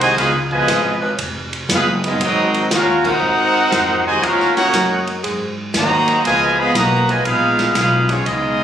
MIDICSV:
0, 0, Header, 1, 6, 480
1, 0, Start_track
1, 0, Tempo, 505051
1, 167, Time_signature, 4, 2, 24, 8
1, 8209, End_track
2, 0, Start_track
2, 0, Title_t, "Trumpet section"
2, 0, Program_c, 0, 61
2, 8, Note_on_c, 0, 72, 97
2, 9, Note_on_c, 0, 75, 101
2, 11, Note_on_c, 0, 80, 118
2, 14, Note_on_c, 0, 66, 99
2, 157, Note_off_c, 0, 72, 0
2, 157, Note_off_c, 0, 75, 0
2, 159, Note_off_c, 0, 80, 0
2, 160, Note_off_c, 0, 66, 0
2, 168, Note_on_c, 0, 77, 99
2, 170, Note_on_c, 0, 71, 88
2, 173, Note_on_c, 0, 68, 96
2, 174, Note_on_c, 0, 63, 88
2, 312, Note_off_c, 0, 77, 0
2, 314, Note_off_c, 0, 71, 0
2, 316, Note_off_c, 0, 63, 0
2, 316, Note_off_c, 0, 68, 0
2, 485, Note_on_c, 0, 75, 84
2, 487, Note_on_c, 0, 65, 92
2, 487, Note_on_c, 0, 80, 102
2, 490, Note_on_c, 0, 71, 95
2, 933, Note_off_c, 0, 75, 0
2, 934, Note_off_c, 0, 65, 0
2, 934, Note_off_c, 0, 80, 0
2, 936, Note_off_c, 0, 71, 0
2, 1655, Note_on_c, 0, 63, 76
2, 1655, Note_on_c, 0, 68, 78
2, 1659, Note_on_c, 0, 71, 80
2, 1659, Note_on_c, 0, 77, 91
2, 1788, Note_off_c, 0, 63, 0
2, 1789, Note_off_c, 0, 68, 0
2, 1791, Note_off_c, 0, 71, 0
2, 1792, Note_off_c, 0, 77, 0
2, 1964, Note_on_c, 0, 65, 79
2, 1966, Note_on_c, 0, 68, 72
2, 1968, Note_on_c, 0, 75, 83
2, 1971, Note_on_c, 0, 59, 76
2, 2096, Note_off_c, 0, 65, 0
2, 2097, Note_off_c, 0, 68, 0
2, 2099, Note_off_c, 0, 75, 0
2, 2100, Note_off_c, 0, 59, 0
2, 2126, Note_on_c, 0, 66, 78
2, 2128, Note_on_c, 0, 60, 87
2, 2129, Note_on_c, 0, 70, 88
2, 2131, Note_on_c, 0, 75, 100
2, 2555, Note_off_c, 0, 66, 0
2, 2556, Note_off_c, 0, 60, 0
2, 2557, Note_off_c, 0, 70, 0
2, 2558, Note_off_c, 0, 75, 0
2, 2604, Note_on_c, 0, 66, 84
2, 2605, Note_on_c, 0, 61, 87
2, 2605, Note_on_c, 0, 77, 94
2, 2612, Note_on_c, 0, 70, 87
2, 2885, Note_off_c, 0, 66, 0
2, 2886, Note_off_c, 0, 61, 0
2, 2886, Note_off_c, 0, 77, 0
2, 2889, Note_off_c, 0, 70, 0
2, 2913, Note_on_c, 0, 63, 95
2, 2915, Note_on_c, 0, 78, 110
2, 2918, Note_on_c, 0, 70, 96
2, 2918, Note_on_c, 0, 72, 96
2, 3848, Note_off_c, 0, 72, 0
2, 3859, Note_on_c, 0, 72, 97
2, 3861, Note_off_c, 0, 63, 0
2, 3862, Note_off_c, 0, 78, 0
2, 3862, Note_on_c, 0, 66, 90
2, 3863, Note_off_c, 0, 70, 0
2, 3863, Note_on_c, 0, 75, 102
2, 3864, Note_on_c, 0, 80, 111
2, 4003, Note_off_c, 0, 72, 0
2, 4005, Note_off_c, 0, 66, 0
2, 4005, Note_off_c, 0, 75, 0
2, 4006, Note_off_c, 0, 80, 0
2, 4020, Note_on_c, 0, 66, 95
2, 4024, Note_on_c, 0, 61, 97
2, 4024, Note_on_c, 0, 70, 93
2, 4024, Note_on_c, 0, 77, 117
2, 4324, Note_off_c, 0, 70, 0
2, 4334, Note_off_c, 0, 66, 0
2, 4335, Note_on_c, 0, 63, 93
2, 4336, Note_off_c, 0, 61, 0
2, 4336, Note_off_c, 0, 77, 0
2, 4336, Note_on_c, 0, 70, 86
2, 4336, Note_on_c, 0, 73, 81
2, 4337, Note_on_c, 0, 78, 104
2, 4778, Note_off_c, 0, 63, 0
2, 4779, Note_off_c, 0, 70, 0
2, 4779, Note_off_c, 0, 73, 0
2, 4779, Note_off_c, 0, 78, 0
2, 5481, Note_on_c, 0, 82, 108
2, 5483, Note_on_c, 0, 72, 88
2, 5485, Note_on_c, 0, 66, 92
2, 5486, Note_on_c, 0, 75, 89
2, 5912, Note_off_c, 0, 82, 0
2, 5913, Note_off_c, 0, 72, 0
2, 5914, Note_off_c, 0, 66, 0
2, 5914, Note_off_c, 0, 75, 0
2, 5952, Note_on_c, 0, 65, 103
2, 5953, Note_on_c, 0, 71, 95
2, 5953, Note_on_c, 0, 80, 117
2, 5957, Note_on_c, 0, 75, 99
2, 6238, Note_off_c, 0, 65, 0
2, 6238, Note_off_c, 0, 80, 0
2, 6239, Note_off_c, 0, 71, 0
2, 6241, Note_off_c, 0, 75, 0
2, 6264, Note_on_c, 0, 77, 100
2, 6265, Note_on_c, 0, 83, 110
2, 6266, Note_on_c, 0, 75, 93
2, 6268, Note_on_c, 0, 68, 100
2, 6416, Note_off_c, 0, 77, 0
2, 6416, Note_off_c, 0, 83, 0
2, 6417, Note_off_c, 0, 75, 0
2, 6418, Note_off_c, 0, 68, 0
2, 6432, Note_on_c, 0, 75, 94
2, 6434, Note_on_c, 0, 66, 96
2, 6435, Note_on_c, 0, 71, 92
2, 6436, Note_on_c, 0, 82, 108
2, 6718, Note_off_c, 0, 75, 0
2, 6719, Note_off_c, 0, 66, 0
2, 6719, Note_off_c, 0, 71, 0
2, 6720, Note_off_c, 0, 82, 0
2, 6747, Note_on_c, 0, 65, 82
2, 6748, Note_on_c, 0, 71, 86
2, 6751, Note_on_c, 0, 80, 96
2, 6752, Note_on_c, 0, 75, 88
2, 6882, Note_off_c, 0, 71, 0
2, 6894, Note_on_c, 0, 68, 85
2, 6894, Note_on_c, 0, 71, 88
2, 6895, Note_on_c, 0, 77, 101
2, 6896, Note_on_c, 0, 63, 95
2, 6897, Note_off_c, 0, 65, 0
2, 6899, Note_off_c, 0, 80, 0
2, 6900, Note_off_c, 0, 75, 0
2, 7337, Note_off_c, 0, 68, 0
2, 7337, Note_off_c, 0, 71, 0
2, 7337, Note_off_c, 0, 77, 0
2, 7338, Note_off_c, 0, 63, 0
2, 7379, Note_on_c, 0, 63, 78
2, 7381, Note_on_c, 0, 77, 104
2, 7383, Note_on_c, 0, 68, 90
2, 7383, Note_on_c, 0, 71, 86
2, 7670, Note_off_c, 0, 63, 0
2, 7672, Note_off_c, 0, 68, 0
2, 7672, Note_off_c, 0, 71, 0
2, 7672, Note_off_c, 0, 77, 0
2, 7695, Note_on_c, 0, 59, 76
2, 7696, Note_on_c, 0, 73, 99
2, 7701, Note_on_c, 0, 65, 84
2, 7701, Note_on_c, 0, 68, 79
2, 7843, Note_off_c, 0, 68, 0
2, 7847, Note_off_c, 0, 65, 0
2, 7848, Note_off_c, 0, 59, 0
2, 7851, Note_off_c, 0, 73, 0
2, 7854, Note_on_c, 0, 68, 102
2, 7856, Note_on_c, 0, 75, 114
2, 7859, Note_on_c, 0, 65, 100
2, 7860, Note_on_c, 0, 59, 106
2, 8209, Note_off_c, 0, 59, 0
2, 8209, Note_off_c, 0, 65, 0
2, 8209, Note_off_c, 0, 68, 0
2, 8209, Note_off_c, 0, 75, 0
2, 8209, End_track
3, 0, Start_track
3, 0, Title_t, "Saxophone section"
3, 0, Program_c, 1, 65
3, 964, Note_on_c, 1, 61, 90
3, 967, Note_on_c, 1, 71, 113
3, 968, Note_on_c, 1, 53, 108
3, 970, Note_on_c, 1, 63, 95
3, 1074, Note_off_c, 1, 61, 0
3, 1075, Note_off_c, 1, 71, 0
3, 1076, Note_off_c, 1, 53, 0
3, 1077, Note_off_c, 1, 63, 0
3, 2904, Note_on_c, 1, 56, 95
3, 2905, Note_on_c, 1, 60, 80
3, 2905, Note_on_c, 1, 66, 85
3, 2907, Note_on_c, 1, 70, 105
3, 3006, Note_off_c, 1, 56, 0
3, 3007, Note_off_c, 1, 60, 0
3, 3007, Note_off_c, 1, 66, 0
3, 3008, Note_off_c, 1, 70, 0
3, 4490, Note_on_c, 1, 70, 104
3, 4492, Note_on_c, 1, 61, 82
3, 4495, Note_on_c, 1, 54, 97
3, 4498, Note_on_c, 1, 63, 92
3, 4953, Note_off_c, 1, 70, 0
3, 4954, Note_off_c, 1, 61, 0
3, 4955, Note_off_c, 1, 54, 0
3, 4957, Note_off_c, 1, 63, 0
3, 4967, Note_on_c, 1, 66, 82
3, 4969, Note_on_c, 1, 60, 87
3, 4971, Note_on_c, 1, 68, 106
3, 4979, Note_on_c, 1, 56, 95
3, 5183, Note_off_c, 1, 66, 0
3, 5184, Note_off_c, 1, 60, 0
3, 5186, Note_off_c, 1, 68, 0
3, 5191, Note_off_c, 1, 56, 0
3, 6725, Note_on_c, 1, 71, 101
3, 6726, Note_on_c, 1, 53, 91
3, 6731, Note_on_c, 1, 61, 80
3, 6732, Note_on_c, 1, 63, 84
3, 6834, Note_off_c, 1, 71, 0
3, 6835, Note_off_c, 1, 53, 0
3, 6838, Note_off_c, 1, 61, 0
3, 6838, Note_off_c, 1, 63, 0
3, 8209, End_track
4, 0, Start_track
4, 0, Title_t, "Trombone section"
4, 0, Program_c, 2, 61
4, 5, Note_on_c, 2, 56, 92
4, 9, Note_on_c, 2, 48, 95
4, 11, Note_on_c, 2, 51, 96
4, 155, Note_off_c, 2, 56, 0
4, 157, Note_off_c, 2, 48, 0
4, 158, Note_off_c, 2, 51, 0
4, 175, Note_on_c, 2, 56, 84
4, 177, Note_on_c, 2, 65, 94
4, 178, Note_on_c, 2, 59, 81
4, 317, Note_off_c, 2, 56, 0
4, 319, Note_off_c, 2, 65, 0
4, 320, Note_off_c, 2, 59, 0
4, 496, Note_on_c, 2, 56, 99
4, 498, Note_on_c, 2, 47, 91
4, 498, Note_on_c, 2, 53, 92
4, 939, Note_off_c, 2, 56, 0
4, 940, Note_off_c, 2, 47, 0
4, 940, Note_off_c, 2, 53, 0
4, 1621, Note_on_c, 2, 65, 80
4, 1624, Note_on_c, 2, 59, 85
4, 1629, Note_on_c, 2, 56, 73
4, 1762, Note_off_c, 2, 65, 0
4, 1764, Note_off_c, 2, 59, 0
4, 1768, Note_off_c, 2, 56, 0
4, 1942, Note_on_c, 2, 56, 80
4, 1942, Note_on_c, 2, 59, 78
4, 1945, Note_on_c, 2, 63, 72
4, 2084, Note_off_c, 2, 56, 0
4, 2085, Note_off_c, 2, 59, 0
4, 2086, Note_off_c, 2, 63, 0
4, 2106, Note_on_c, 2, 60, 81
4, 2108, Note_on_c, 2, 54, 83
4, 2110, Note_on_c, 2, 63, 81
4, 2545, Note_off_c, 2, 54, 0
4, 2545, Note_off_c, 2, 60, 0
4, 2546, Note_off_c, 2, 63, 0
4, 2589, Note_on_c, 2, 65, 81
4, 2877, Note_off_c, 2, 65, 0
4, 2901, Note_on_c, 2, 60, 101
4, 2903, Note_on_c, 2, 63, 96
4, 2905, Note_on_c, 2, 66, 95
4, 3855, Note_off_c, 2, 60, 0
4, 3856, Note_off_c, 2, 63, 0
4, 3857, Note_off_c, 2, 66, 0
4, 3864, Note_on_c, 2, 48, 93
4, 3866, Note_on_c, 2, 56, 89
4, 3867, Note_on_c, 2, 51, 90
4, 4006, Note_off_c, 2, 48, 0
4, 4007, Note_off_c, 2, 51, 0
4, 4007, Note_off_c, 2, 56, 0
4, 4019, Note_on_c, 2, 65, 88
4, 4325, Note_on_c, 2, 61, 89
4, 4330, Note_on_c, 2, 66, 97
4, 4331, Note_on_c, 2, 58, 82
4, 4334, Note_off_c, 2, 65, 0
4, 4773, Note_off_c, 2, 61, 0
4, 4776, Note_off_c, 2, 58, 0
4, 4776, Note_off_c, 2, 66, 0
4, 5468, Note_on_c, 2, 54, 87
4, 5469, Note_on_c, 2, 58, 89
4, 5472, Note_on_c, 2, 51, 93
4, 5905, Note_off_c, 2, 54, 0
4, 5905, Note_off_c, 2, 58, 0
4, 5907, Note_off_c, 2, 51, 0
4, 5944, Note_on_c, 2, 47, 91
4, 5945, Note_on_c, 2, 53, 90
4, 5947, Note_on_c, 2, 56, 94
4, 6234, Note_off_c, 2, 47, 0
4, 6234, Note_off_c, 2, 53, 0
4, 6235, Note_off_c, 2, 56, 0
4, 6268, Note_on_c, 2, 53, 88
4, 6270, Note_on_c, 2, 56, 87
4, 6270, Note_on_c, 2, 59, 101
4, 6417, Note_off_c, 2, 53, 0
4, 6419, Note_off_c, 2, 56, 0
4, 6419, Note_off_c, 2, 59, 0
4, 6429, Note_on_c, 2, 58, 88
4, 6716, Note_off_c, 2, 58, 0
4, 6740, Note_on_c, 2, 47, 82
4, 6742, Note_on_c, 2, 53, 86
4, 6744, Note_on_c, 2, 56, 84
4, 6893, Note_off_c, 2, 47, 0
4, 6894, Note_off_c, 2, 53, 0
4, 6895, Note_off_c, 2, 56, 0
4, 6897, Note_on_c, 2, 59, 96
4, 6900, Note_on_c, 2, 65, 92
4, 6909, Note_on_c, 2, 56, 97
4, 7338, Note_off_c, 2, 59, 0
4, 7340, Note_off_c, 2, 65, 0
4, 7345, Note_off_c, 2, 56, 0
4, 7387, Note_on_c, 2, 59, 88
4, 7390, Note_on_c, 2, 56, 90
4, 7393, Note_on_c, 2, 65, 86
4, 7675, Note_off_c, 2, 59, 0
4, 7676, Note_off_c, 2, 56, 0
4, 7678, Note_off_c, 2, 65, 0
4, 7701, Note_on_c, 2, 61, 84
4, 7704, Note_on_c, 2, 53, 80
4, 7706, Note_on_c, 2, 56, 82
4, 7844, Note_off_c, 2, 56, 0
4, 7854, Note_off_c, 2, 61, 0
4, 7855, Note_off_c, 2, 53, 0
4, 7855, Note_on_c, 2, 63, 99
4, 7856, Note_on_c, 2, 56, 97
4, 7861, Note_on_c, 2, 59, 90
4, 8209, Note_off_c, 2, 56, 0
4, 8209, Note_off_c, 2, 59, 0
4, 8209, Note_off_c, 2, 63, 0
4, 8209, End_track
5, 0, Start_track
5, 0, Title_t, "Upright bass"
5, 0, Program_c, 3, 32
5, 0, Note_on_c, 3, 36, 94
5, 151, Note_off_c, 3, 36, 0
5, 163, Note_on_c, 3, 37, 90
5, 631, Note_off_c, 3, 37, 0
5, 644, Note_on_c, 3, 32, 101
5, 1112, Note_off_c, 3, 32, 0
5, 1127, Note_on_c, 3, 29, 85
5, 1593, Note_off_c, 3, 29, 0
5, 1603, Note_on_c, 3, 30, 100
5, 2071, Note_off_c, 3, 30, 0
5, 2088, Note_on_c, 3, 32, 86
5, 2554, Note_off_c, 3, 32, 0
5, 2573, Note_on_c, 3, 39, 98
5, 3037, Note_off_c, 3, 39, 0
5, 3047, Note_on_c, 3, 44, 94
5, 3514, Note_off_c, 3, 44, 0
5, 3531, Note_on_c, 3, 41, 104
5, 3996, Note_off_c, 3, 41, 0
5, 4014, Note_on_c, 3, 39, 89
5, 4477, Note_off_c, 3, 39, 0
5, 4497, Note_on_c, 3, 42, 98
5, 4958, Note_off_c, 3, 42, 0
5, 4973, Note_on_c, 3, 44, 86
5, 5436, Note_off_c, 3, 44, 0
5, 5454, Note_on_c, 3, 39, 106
5, 5917, Note_off_c, 3, 39, 0
5, 5935, Note_on_c, 3, 37, 91
5, 6397, Note_off_c, 3, 37, 0
5, 6410, Note_on_c, 3, 35, 104
5, 6874, Note_off_c, 3, 35, 0
5, 6891, Note_on_c, 3, 34, 92
5, 7354, Note_off_c, 3, 34, 0
5, 7367, Note_on_c, 3, 35, 106
5, 7832, Note_off_c, 3, 35, 0
5, 7845, Note_on_c, 3, 37, 87
5, 8209, Note_off_c, 3, 37, 0
5, 8209, End_track
6, 0, Start_track
6, 0, Title_t, "Drums"
6, 12, Note_on_c, 9, 51, 62
6, 107, Note_off_c, 9, 51, 0
6, 166, Note_on_c, 9, 36, 26
6, 172, Note_on_c, 9, 51, 75
6, 261, Note_off_c, 9, 36, 0
6, 267, Note_off_c, 9, 51, 0
6, 485, Note_on_c, 9, 36, 76
6, 581, Note_off_c, 9, 36, 0
6, 646, Note_on_c, 9, 38, 80
6, 648, Note_on_c, 9, 44, 58
6, 648, Note_on_c, 9, 51, 86
6, 741, Note_off_c, 9, 38, 0
6, 743, Note_off_c, 9, 44, 0
6, 743, Note_off_c, 9, 51, 0
6, 1126, Note_on_c, 9, 36, 26
6, 1127, Note_on_c, 9, 51, 76
6, 1221, Note_off_c, 9, 36, 0
6, 1222, Note_off_c, 9, 51, 0
6, 1453, Note_on_c, 9, 51, 52
6, 1548, Note_off_c, 9, 51, 0
6, 1608, Note_on_c, 9, 36, 23
6, 1609, Note_on_c, 9, 38, 76
6, 1611, Note_on_c, 9, 44, 63
6, 1611, Note_on_c, 9, 51, 80
6, 1703, Note_off_c, 9, 36, 0
6, 1704, Note_off_c, 9, 38, 0
6, 1706, Note_off_c, 9, 44, 0
6, 1706, Note_off_c, 9, 51, 0
6, 1937, Note_on_c, 9, 51, 59
6, 2033, Note_off_c, 9, 51, 0
6, 2091, Note_on_c, 9, 36, 20
6, 2097, Note_on_c, 9, 51, 70
6, 2186, Note_off_c, 9, 36, 0
6, 2192, Note_off_c, 9, 51, 0
6, 2418, Note_on_c, 9, 51, 55
6, 2513, Note_off_c, 9, 51, 0
6, 2573, Note_on_c, 9, 36, 19
6, 2575, Note_on_c, 9, 38, 86
6, 2577, Note_on_c, 9, 44, 62
6, 2577, Note_on_c, 9, 51, 76
6, 2668, Note_off_c, 9, 36, 0
6, 2670, Note_off_c, 9, 38, 0
6, 2672, Note_off_c, 9, 44, 0
6, 2672, Note_off_c, 9, 51, 0
6, 2894, Note_on_c, 9, 36, 95
6, 2897, Note_on_c, 9, 49, 83
6, 2989, Note_off_c, 9, 36, 0
6, 2992, Note_off_c, 9, 49, 0
6, 3535, Note_on_c, 9, 36, 26
6, 3536, Note_on_c, 9, 38, 79
6, 3538, Note_on_c, 9, 44, 65
6, 3538, Note_on_c, 9, 51, 69
6, 3630, Note_off_c, 9, 36, 0
6, 3631, Note_off_c, 9, 38, 0
6, 3633, Note_off_c, 9, 44, 0
6, 3633, Note_off_c, 9, 51, 0
6, 4017, Note_on_c, 9, 36, 21
6, 4024, Note_on_c, 9, 51, 67
6, 4112, Note_off_c, 9, 36, 0
6, 4119, Note_off_c, 9, 51, 0
6, 4183, Note_on_c, 9, 38, 33
6, 4279, Note_off_c, 9, 38, 0
6, 4340, Note_on_c, 9, 38, 50
6, 4342, Note_on_c, 9, 51, 50
6, 4436, Note_off_c, 9, 38, 0
6, 4437, Note_off_c, 9, 51, 0
6, 4495, Note_on_c, 9, 36, 28
6, 4499, Note_on_c, 9, 38, 82
6, 4501, Note_on_c, 9, 44, 60
6, 4501, Note_on_c, 9, 51, 84
6, 4590, Note_off_c, 9, 36, 0
6, 4594, Note_off_c, 9, 38, 0
6, 4596, Note_off_c, 9, 44, 0
6, 4596, Note_off_c, 9, 51, 0
6, 4822, Note_on_c, 9, 51, 54
6, 4917, Note_off_c, 9, 51, 0
6, 4976, Note_on_c, 9, 36, 30
6, 4980, Note_on_c, 9, 51, 68
6, 5071, Note_off_c, 9, 36, 0
6, 5075, Note_off_c, 9, 51, 0
6, 5454, Note_on_c, 9, 38, 75
6, 5455, Note_on_c, 9, 36, 24
6, 5456, Note_on_c, 9, 44, 55
6, 5456, Note_on_c, 9, 51, 75
6, 5549, Note_off_c, 9, 38, 0
6, 5550, Note_off_c, 9, 36, 0
6, 5551, Note_off_c, 9, 44, 0
6, 5551, Note_off_c, 9, 51, 0
6, 5775, Note_on_c, 9, 51, 60
6, 5870, Note_off_c, 9, 51, 0
6, 5934, Note_on_c, 9, 36, 25
6, 5940, Note_on_c, 9, 51, 63
6, 6030, Note_off_c, 9, 36, 0
6, 6035, Note_off_c, 9, 51, 0
6, 6412, Note_on_c, 9, 36, 27
6, 6415, Note_on_c, 9, 38, 80
6, 6417, Note_on_c, 9, 44, 60
6, 6417, Note_on_c, 9, 51, 77
6, 6507, Note_off_c, 9, 36, 0
6, 6510, Note_off_c, 9, 38, 0
6, 6512, Note_off_c, 9, 44, 0
6, 6512, Note_off_c, 9, 51, 0
6, 6738, Note_on_c, 9, 51, 54
6, 6833, Note_off_c, 9, 51, 0
6, 6890, Note_on_c, 9, 36, 22
6, 6893, Note_on_c, 9, 51, 73
6, 6985, Note_off_c, 9, 36, 0
6, 6988, Note_off_c, 9, 51, 0
6, 7210, Note_on_c, 9, 38, 63
6, 7212, Note_on_c, 9, 51, 53
6, 7305, Note_off_c, 9, 38, 0
6, 7307, Note_off_c, 9, 51, 0
6, 7366, Note_on_c, 9, 38, 72
6, 7367, Note_on_c, 9, 36, 21
6, 7368, Note_on_c, 9, 44, 57
6, 7368, Note_on_c, 9, 51, 79
6, 7461, Note_off_c, 9, 38, 0
6, 7462, Note_off_c, 9, 36, 0
6, 7463, Note_off_c, 9, 44, 0
6, 7463, Note_off_c, 9, 51, 0
6, 7688, Note_on_c, 9, 51, 59
6, 7783, Note_off_c, 9, 51, 0
6, 7848, Note_on_c, 9, 36, 26
6, 7851, Note_on_c, 9, 51, 67
6, 7943, Note_off_c, 9, 36, 0
6, 7946, Note_off_c, 9, 51, 0
6, 8209, End_track
0, 0, End_of_file